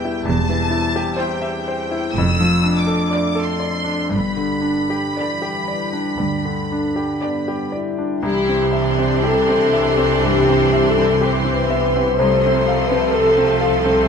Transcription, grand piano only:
Already playing: E2 B2 E4 G4 B4 E5
0.05 E4
0.25 E2
0.49 E3
0.71 E4
0.96 G4
1.17 C5
1.42 E5
1.68 C5
1.91 E4
2.18 F2
2.40 F3
2.64 D4
2.87 A4
3.11 D5
3.35 A4
3.60 D5
3.84 D4
4.09 G2
4.37 D3
4.62 D4
4.90 G4
5.17 D5
5.42 G4
5.68 D5
5.93 D4
6.18 G2
6.45 D3
6.72 D4
6.96 G4
7.21 D5
7.48 G4
7.72 D5
7.98 D4
8.23 C2
8.49 C4
8.72 E5
8.98 C4
9.23 G4
9.49 C4
9.73 E5
9.98 C4
10.23 G2
10.49 C4
10.73 E5
10.98 C4
11.21 G4
11.44 C4
11.70 E5
11.96 C4
12.19 C2
12.46 C4
12.68 F5
12.91 C4
13.15 A4
13.38 C4
13.61 F5
13.85 C4

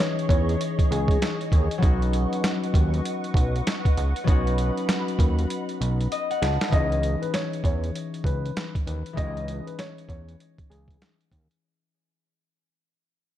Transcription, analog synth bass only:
0.29 E2
0.91 C#2
1.52 D#2
1.83 B1
2.74 D#2
3.34 B1
3.97 C#2
4.28 B1
5.19 D#2
5.81 B1
6.42 C#2
6.73 C#2
7.64 E2
8.24 C#2
8.87 D#2
9.18 C#2
10.09 E2
10.71 C#2
11.32 D#2

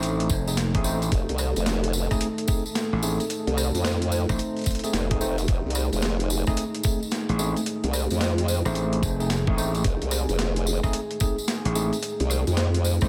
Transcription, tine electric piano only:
Already playing: A3 C4 D#4 C5
0.47 A3 C4 D#4 G#4
0.75 A3 C4 D#4 G#4
0.84 A3 C4 D#4 C5
2.11 A3 C4 D#4 G#4
2.48 A3 C4 D#4 G#4
3.03 A3 C4 D#4 G#4
4.29 A3 C4 D#4 C5
4.84 A3 C4 D#4 G#4
5.11 A3 C4 D#4 G#4
5.21 A3 C4 D#4 C5
6.47 A3 C4 D#4 G#4
6.85 A3 C4 D#4 G#4
7.39 A3 C4 D#4 G#4
8.66 A3 C4 D#4 C5
9.20 A3 C4 D#4 G#4
9.47 A3 C4 D#4 G#4
9.57 A3 C4 D#4 C5
10.84 A3 C4 D#4 G#4
11.21 A3 C4 D#4 G#4
11.75 A3 C4 D#4 G#4
13.02 A3 C4 D#4 C5

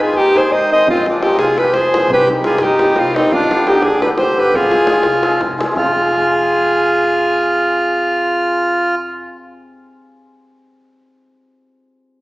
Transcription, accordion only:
0.00 F4
0.17 D#4
0.36 G#4
0.54 C5
0.75 C5
0.91 C4
1.10 D4
1.26 D#4
1.40 F4
1.62 G4
1.76 G#4
2.13 G4
2.45 F4
2.64 D#4
2.99 C4
3.16 C4
3.34 D4
3.68 D#4
3.84 D4
4.05 G4
4.20 G4
4.39 G4
4.55 F4
5.77 F4

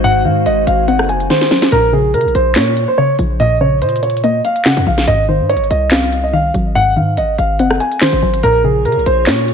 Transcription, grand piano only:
0.04 F#5
0.25 F5
0.46 D#5
0.67 F5
0.88 F#5
1.09 G#5
1.30 C5
1.72 A#4
1.93 G#4
2.14 A#4
2.35 C5
2.56 C#5
2.88 C5
2.98 C#5
3.40 D#5
3.61 C#5
3.82 C5
4.03 C#5
4.24 D#5
4.45 F5
4.66 F#5
4.87 F5
5.08 D#5
5.29 C5
5.49 C#5
5.70 D#5
5.92 F5
6.24 D#5
6.33 F5
6.75 F#5
6.96 F5
7.18 D#5
7.38 F5
7.60 F#5
7.80 G#5
8.01 C5
8.43 A#4
8.64 G#4
8.85 A#4
9.06 C5
9.27 C#5

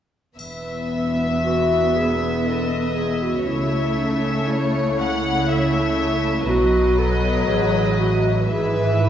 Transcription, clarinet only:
1.45 F#4
1.96 G#4
2.46 A4
2.95 G#4
3.23 F#4
3.47 E4
3.98 D#4
4.22 C#4
4.47 E4
6.48 F#4
6.98 A4
7.49 G#4
7.99 F#4
8.50 G#4
9.00 E4

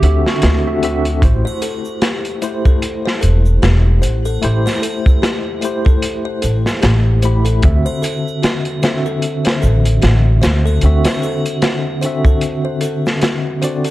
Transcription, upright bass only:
0.02 D2
0.43 D2
1.23 A1
3.23 E1
3.63 E1
4.03 A1
4.44 A1
6.44 A1
6.83 A1
7.64 D2
9.63 A1
10.03 A1
10.43 D2
10.83 D2

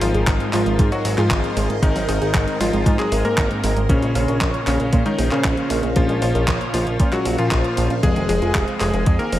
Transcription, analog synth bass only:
0.01 G#1
0.14 G#1
0.27 G#1
0.53 G#1
0.66 G#1
0.79 G#2
1.05 G#1
1.18 G#2
1.31 G#1
1.57 G#1
1.69 G#1
1.83 G#1
1.95 G#1
2.08 G#1
2.21 G#1
2.34 G#1
2.60 G#1
2.73 G#1
2.86 G#2
3.12 G#1
3.25 G#2
3.38 G#1
3.63 G#1
3.76 G#1
3.89 A#1
4.02 A#1
4.15 A#1
4.28 A#1
4.41 A#1
4.67 A#1
4.80 A#1
4.93 A#2
5.18 A#1
5.32 A#2
5.44 A#1
5.70 A#1
5.83 A#1
5.96 A#1
6.09 A#1
6.22 A#1
6.35 A#1
6.48 A#1
6.74 A#1
6.87 A#1
7.00 A#2
7.25 A#1
7.38 A#2
7.52 A#1
7.77 A#1
7.90 A#1
8.03 F1
8.16 F1
8.29 F1
8.42 F1
8.55 F1
8.81 F1
8.94 F1
9.07 F2
9.32 F1

